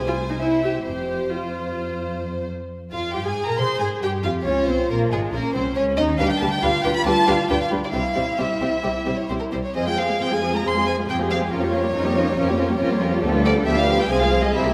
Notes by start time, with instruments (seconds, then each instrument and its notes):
Already playing: double bass section C2, cello section C2, violin section C5 G#5
0.07 viola section F4
0.28 viola section D#4
0.40 viola section E4, violin section C5 E5
0.64 viola section G4
0.86 double bass section F1, cello section F2, viola section G4, violin section C5
1.33 viola section F4, violin section C5
2.91 double bass section F2, violin section F4 F5, viola section F4
3.14 double bass section G2, violin section G4 G5, viola section G4
3.24 double bass section G#2, viola section G#4, violin section G#4 G#5
3.47 double bass section A#2, violin section A#4 A#5, viola section A#4
3.58 double bass section C3, cello section G#4, violin section C5 C6, viola section C5
3.79 double bass section G#2, violin section G#4 G#5, viola section G#4
4.02 double bass section G2, cello section G4, violin section G4 G5, viola section G4
4.24 double bass section F2, viola section F4, violin section F4 F5
4.45 double bass section C#2, violin section C#4 C#5, viola section C#4, cello section F4
4.67 double bass section C2, viola section C4, violin section C4 C5
4.89 double bass section A#1, viola section A#3, violin section A#3 A#4
5.11 double bass section G#1, viola section G#3, violin section G#3 G#4
5.32 double bass section A#1, violin section A#3 A#4, viola section A#3, cello section C#4
5.54 double bass section C2, violin section C4 C5, viola section C4
5.76 double bass section C#2, violin section C#4 C#5, viola section C#4
5.96 double bass section D#2, violin section D#4 D#5, viola section D#4
6.18 double bass section D2, viola section G3 D4, cello section D4, violin section G4 B4 F5
6.29 violin section G5
6.40 double bass section D2, viola section G3 D4, violin section G4 B4 A5
6.52 violin section G5
6.62 double bass section D2, viola section G3 D4, cello section F4, violin section G4 B4 F5
6.84 double bass section D2, viola section G3 D4, violin section G4 B4 G5
6.95 violin section B5
7.05 double bass section D2, viola section G3 D4, violin section G4 B4 A5
7.27 double bass section D2, viola section G3 D4, violin section G4 B4 F5
7.50 double bass section D2, viola section G3 D4, violin section G4 B4 G5
7.62 violin section F5
7.71 double bass section D2, viola section G3 D4, violin section G4 B4
7.84 violin section D5
7.93 double bass section C2, viola section G3 C4, cello section E4, violin section G4 C5 F5
8.15 double bass section C2, viola section G3 C4, violin section G4 C5
8.38 double bass section C2, viola section G3 C4, violin section G4 C5 E5
8.61 double bass section C2, viola section G3 C4, violin section G4 C5
8.83 double bass section C2, viola section G3 C4, violin section G4 C5
9.06 double bass section C2, viola section G3 C4, violin section G4 C5
9.18 violin section C#5
9.29 double bass section C2, viola section G3 C4, violin section G4 C5
9.40 violin section A#4
9.52 double bass section C2, viola section G3 C4, violin section G4 C5
9.64 violin section C#5
9.75 double bass section F2, viola section F3 C4, cello section G#4, violin section G#4 C5 D#5
9.87 viola section G#3, violin section F4 G#4 G5
9.98 viola section F3 C4, violin section G#4 C5 F5
10.10 viola section G#3, violin section F4 G#4
10.21 double bass section F2, viola section F3 C4, violin section G#4 C5 G5
10.31 viola section G#3, violin section F4 G#4 G#5
10.42 viola section F3 C4, violin section G#4 C5
10.53 viola section G#3, violin section F4 G#4 A#5
10.64 double bass section F2, viola section F3 C4, violin section G#4 C5 C6
10.76 viola section G#3, violin section F4 G#4
10.86 viola section F3 C4, violin section G#4 C5 G#5
10.98 viola section G#3, violin section F4 G#4
11.09 double bass section F2, viola section F3 C4, cello section G4, violin section G#4 C5 G5
11.20 viola section G#3, violin section F4 G#4
11.30 viola section F3 C4, violin section G#4 C5 F5
11.41 viola section G#3, violin section F4 G#4
11.51 double bass section F2, viola section F3 C#4, violin section F4 A#4 C#5, cello section F4
11.62 viola section G3 A#3, violin section G4 C#5
11.73 viola section F3 C#4, violin section F4 A#4
11.83 viola section G3 A#3, violin section G4 C#5
11.94 double bass section F2, viola section F3 C#4, cello section D#4, violin section F4 A#4
12.05 viola section G3 A#3, violin section G4 C#5
12.16 viola section F3 C#4, violin section F4 A#4
12.28 viola section G3 A#3, violin section G4 C#5
12.38 double bass section F2, viola section F3 C#4, cello section C#4, violin section F4 A#4
12.48 viola section G3 A#3, violin section G4 C#5
12.58 viola section F3 C#4, violin section F4 A#4
12.69 viola section G3 A#3, violin section G4 C#5
12.79 double bass section F2, viola section F3 C#4, cello section F4, violin section F4 A#4
12.90 viola section G3 A#3, violin section G4 C#5
13.01 viola section F3 C#4, violin section F4 A#4
13.13 viola section G3 A#3, violin section G4 C#5
13.23 double bass section D2, viola section F3 B3, violin section D4 G4, cello section A4
13.33 viola section G3 D4, violin section F4 B4
13.43 viola section F3 B3, violin section D4 G4 D5
13.55 viola section G3 D4, violin section F4 B4
13.66 double bass section D2, viola section F3 B3, violin section D4 G4 E5, cello section G4
13.77 viola section G3 D4, violin section F4 B4 F5
13.88 viola section F3 B3, violin section D4 G4
13.99 viola section G3 D4, violin section F4 B4 G5
14.09 double bass section C2, viola section F3 C4, cello section G#4, violin section G#4 C5 G#5
14.21 viola section G#3, violin section F4 G#4 F5
14.32 viola section F3 C4, violin section G#4 C5
14.43 viola section G#3, violin section F4 G#4 D#5
14.54 double bass section C2, viola section G3 C4, violin section E4 C5 E5
14.65 viola section A#3 E4, violin section G4 A#4